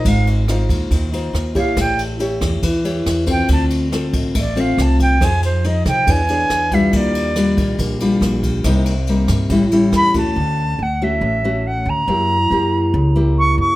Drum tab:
RD |xxxxxxxx|xxxxxxxx|xxxxxxxx|xxxxxxxx|
SD |--r---r-|r--r--r-|--r---r-|r--r--r-|
BD |o--oo--o|o--oo--o|o--oo--o|o--oo--o|

RD |xxxxxxxx|xxxxxxxx|--------|--------|
SD |--r---r-|r--r--r-|--------|--------|
BD |o--oo--o|o--oo--o|--------|--------|